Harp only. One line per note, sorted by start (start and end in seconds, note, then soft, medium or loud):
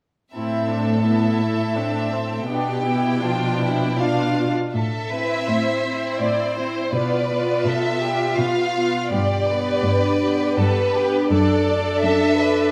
4.74 6.97 A2 soft
5.11 6.57 C4 soft
5.49 6.21 E4 soft
5.85 6.97 C5 soft
6.22 6.97 E4 soft
6.58 6.97 C4 soft
6.95 9.16 B2 soft
7.31 9.49 B3 soft
7.67 8.76 F4 soft
8.05 10.22 D5 soft
8.41 10.58 B4 soft
8.78 9.16 F4 soft
9.14 11.34 G2 soft
9.50 11.34 B3 soft
9.86 10.94 D4 soft
10.23 12.38 D5 soft
10.59 11.34 B4 soft
10.95 12.03 D4 soft
11.32 12.71 F#2 soft
11.68 12.71 A3 soft
12.04 12.71 D4 soft
12.40 12.71 D5 soft